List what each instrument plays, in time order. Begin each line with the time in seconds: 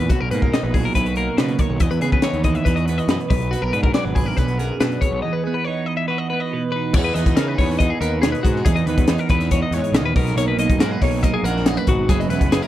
Already playing: clean electric guitar A#2 E3 B3 D#4
0.09 picked electric bass B1, clean electric guitar B2 F#4, kick, closed hi-hat
0.21 picked electric bass B1, clean electric guitar A#4
0.31 picked electric bass G#2, clean electric guitar A#3 B4, closed hi-hat
0.42 clean electric guitar A#4, kick
0.54 clean electric guitar D#4 D#5, snare, closed hi-hat
0.63 picked electric bass A#1, clean electric guitar B4
0.74 clean electric guitar F#3 G#4, kick, open hi-hat
0.85 clean electric guitar A#4
0.95 picked electric bass B1, clean electric guitar E4 B4, kick, closed hi-hat
1.06 clean electric guitar F#4, closed hi-hat
1.16 clean electric guitar A#3 A#4, closed hi-hat
1.37 picked electric bass B2, clean electric guitar C#3 B4, snare, closed hi-hat
1.48 closed hi-hat
1.59 clean electric guitar D#3 C#5, kick, closed hi-hat
1.69 picked electric bass B1
1.80 picked electric bass E2, clean electric guitar E2 D#5, kick, closed hi-hat
1.91 picked electric bass E2, clean electric guitar B4, closed hi-hat
2.01 picked electric bass C#3, clean electric guitar B3 G#4, closed hi-hat
2.12 clean electric guitar B4, kick
2.22 clean electric guitar D#4 C#5, snare, closed hi-hat
2.33 picked electric bass D#2, closed hi-hat
2.44 clean electric guitar E3 D#5, kick, closed hi-hat
2.55 clean electric guitar E5, closed hi-hat
2.65 picked electric bass E2, clean electric guitar E4 B4, kick, closed hi-hat
2.76 clean electric guitar F#4 D#5, closed hi-hat
2.86 clean electric guitar B3 B4, closed hi-hat
2.98 clean electric guitar D#5, closed hi-hat
3.08 picked electric bass F#2, clean electric guitar B2 B4, snare, closed hi-hat
3.21 closed hi-hat
3.30 picked electric bass B1, clean electric guitar B2 B4, kick, open hi-hat
3.42 closed hi-hat
3.51 clean electric guitar B3 F#4, closed hi-hat
3.62 picked electric bass B1, clean electric guitar A#4
3.73 picked electric bass G#2, clean electric guitar D4 B4, closed hi-hat
3.83 clean electric guitar A#4, kick
3.94 clean electric guitar F#3 D5, snare, closed hi-hat
4.05 picked electric bass G#1, clean electric guitar B4
4.15 clean electric guitar G#4 B4, kick, open hi-hat
4.26 clean electric guitar A#4
4.37 picked electric bass B1, clean electric guitar B3 B4, kick, closed hi-hat
4.48 closed hi-hat
4.58 clean electric guitar F#2 G#4 A#4, closed hi-hat
4.80 picked electric bass B2, clean electric guitar D4 B4, snare, closed hi-hat
4.92 closed hi-hat
5.01 clean electric guitar B2 C#5, kick, closed hi-hat
5.12 picked electric bass B1
5.22 clean electric guitar E2 D#5
5.33 clean electric guitar B4
5.44 clean electric guitar B3 G#4
5.54 clean electric guitar B4
5.65 clean electric guitar D#4 C#5
5.86 clean electric guitar D#5
5.97 clean electric guitar E5
6.08 clean electric guitar F#4 B4
6.18 clean electric guitar D#5
6.30 clean electric guitar B3 B4
6.40 clean electric guitar D#5
6.53 clean electric guitar B2 B4
6.72 clean electric guitar B4
6.76 clean electric guitar D#4
6.93 picked electric bass E2, clean electric guitar E3 B3 C#5, kick, crash
6.98 clean electric guitar D#4 G#4
7.04 clean electric guitar B4
7.14 picked electric bass E2, clean electric guitar B3 D#5, closed hi-hat
7.26 picked electric bass E2, kick, closed hi-hat
7.36 picked electric bass C#3, clean electric guitar D#4 A#4, snare, closed hi-hat
7.48 clean electric guitar B4
7.58 picked electric bass E2, clean electric guitar B3 C#5, kick, open hi-hat
7.70 snare
7.79 clean electric guitar D#4 D#5, kick, closed hi-hat
7.90 clean electric guitar G#4
8.01 picked electric bass D#2, clean electric guitar B3 A#4, closed hi-hat
8.22 clean electric guitar B2 G#4, snare, closed hi-hat
8.32 clean electric guitar B4, closed hi-hat
8.43 picked electric bass G#2, clean electric guitar F#4, kick, closed hi-hat
8.56 snare
8.65 picked electric bass E2, clean electric guitar E2 D#4 G#4, kick, closed hi-hat
8.76 clean electric guitar D#5, closed hi-hat
8.86 picked electric bass D#2, clean electric guitar B3 B4, closed hi-hat
8.98 picked electric bass E2, kick, closed hi-hat
9.08 picked electric bass E2, clean electric guitar D#4 G#4, snare, closed hi-hat
9.18 clean electric guitar A#4, closed hi-hat
9.29 picked electric bass E2, clean electric guitar E3 B3 B4, kick, closed hi-hat
9.41 snare, closed hi-hat
9.51 clean electric guitar D#4 C#5, kick, closed hi-hat
9.63 clean electric guitar D#5
9.71 picked electric bass E2, clean electric guitar G#2 C#5, closed hi-hat
9.84 closed hi-hat
9.92 picked electric bass B1, clean electric guitar A#2 D#5, snare, closed hi-hat
10.03 picked electric bass D#2, clean electric guitar B4
10.16 picked electric bass B1, clean electric guitar B2 D#4 A#4, kick, open hi-hat
10.27 snare, closed hi-hat
10.36 picked electric bass B1, clean electric guitar A#3 C#5, closed hi-hat
10.48 clean electric guitar B4
10.57 picked electric bass B1, clean electric guitar D#4 D#5, closed hi-hat
10.69 picked electric bass B1, kick, closed hi-hat
10.79 picked electric bass G#2, clean electric guitar F#3 A#3 A#4, snare, closed hi-hat
10.91 clean electric guitar B4
11.01 picked electric bass B1, clean electric guitar D#4 C#5, kick, open hi-hat
11.23 clean electric guitar A#3 D#5, kick, closed hi-hat
11.34 clean electric guitar G#4
11.43 picked electric bass A#1, clean electric guitar F#2 F#4 A#4, closed hi-hat
11.56 snare
11.66 clean electric guitar G#4, snare, closed hi-hat
11.77 clean electric guitar B4, closed hi-hat
11.87 picked electric bass G#1, clean electric guitar B2 D#4 F#4, kick, closed hi-hat
12.09 picked electric bass F#1, clean electric guitar F#2 F#3 B3 C#4 E4 G#4, kick, closed hi-hat
12.20 clean electric guitar D#5, closed hi-hat
12.29 picked electric bass E1, clean electric guitar B3 B4, closed hi-hat
12.41 picked electric bass F#1, kick, closed hi-hat
12.51 picked electric bass F#1, clean electric guitar B3 G#4, snare, closed hi-hat
12.62 clean electric guitar C#4 A#4, closed hi-hat